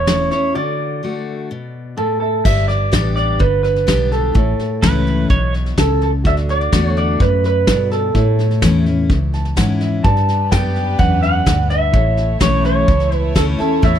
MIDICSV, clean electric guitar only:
0, 0, Header, 1, 2, 480
1, 0, Start_track
1, 0, Tempo, 474308
1, 562, Time_signature, 4, 2, 24, 8
1, 14158, End_track
2, 0, Start_track
2, 0, Title_t, "Clean electric guitar"
2, 0, Program_c, 0, 27
2, 0, Note_on_c, 0, 73, 89
2, 300, Note_off_c, 0, 73, 0
2, 318, Note_on_c, 0, 73, 85
2, 555, Note_off_c, 0, 73, 0
2, 559, Note_on_c, 0, 74, 91
2, 1963, Note_off_c, 0, 74, 0
2, 2000, Note_on_c, 0, 69, 79
2, 2215, Note_off_c, 0, 69, 0
2, 2228, Note_on_c, 0, 69, 76
2, 2459, Note_off_c, 0, 69, 0
2, 2482, Note_on_c, 0, 76, 105
2, 2710, Note_off_c, 0, 76, 0
2, 2714, Note_on_c, 0, 74, 99
2, 3184, Note_off_c, 0, 74, 0
2, 3196, Note_on_c, 0, 74, 88
2, 3442, Note_on_c, 0, 71, 92
2, 3449, Note_off_c, 0, 74, 0
2, 3664, Note_off_c, 0, 71, 0
2, 3676, Note_on_c, 0, 71, 91
2, 4164, Note_off_c, 0, 71, 0
2, 4168, Note_on_c, 0, 69, 75
2, 5087, Note_off_c, 0, 69, 0
2, 5859, Note_on_c, 0, 69, 89
2, 6093, Note_off_c, 0, 69, 0
2, 6105, Note_on_c, 0, 69, 86
2, 6168, Note_off_c, 0, 69, 0
2, 6343, Note_on_c, 0, 76, 110
2, 6406, Note_off_c, 0, 76, 0
2, 6582, Note_on_c, 0, 74, 95
2, 6946, Note_off_c, 0, 74, 0
2, 6946, Note_on_c, 0, 73, 95
2, 7048, Note_off_c, 0, 73, 0
2, 7060, Note_on_c, 0, 74, 92
2, 7300, Note_off_c, 0, 74, 0
2, 7301, Note_on_c, 0, 71, 95
2, 7537, Note_off_c, 0, 71, 0
2, 7550, Note_on_c, 0, 71, 99
2, 8008, Note_off_c, 0, 71, 0
2, 8012, Note_on_c, 0, 69, 76
2, 8928, Note_off_c, 0, 69, 0
2, 10162, Note_on_c, 0, 81, 115
2, 10640, Note_off_c, 0, 81, 0
2, 10644, Note_on_c, 0, 79, 102
2, 11117, Note_off_c, 0, 79, 0
2, 11121, Note_on_c, 0, 78, 99
2, 11348, Note_off_c, 0, 78, 0
2, 11361, Note_on_c, 0, 78, 103
2, 11838, Note_off_c, 0, 78, 0
2, 11842, Note_on_c, 0, 76, 98
2, 12522, Note_off_c, 0, 76, 0
2, 12566, Note_on_c, 0, 73, 93
2, 12795, Note_off_c, 0, 73, 0
2, 12807, Note_on_c, 0, 73, 93
2, 13313, Note_off_c, 0, 73, 0
2, 13313, Note_on_c, 0, 71, 93
2, 13483, Note_off_c, 0, 71, 0
2, 13520, Note_on_c, 0, 69, 91
2, 13585, Note_off_c, 0, 69, 0
2, 13763, Note_on_c, 0, 69, 84
2, 14008, Note_on_c, 0, 76, 101
2, 14009, Note_off_c, 0, 69, 0
2, 14158, Note_off_c, 0, 76, 0
2, 14158, End_track
0, 0, End_of_file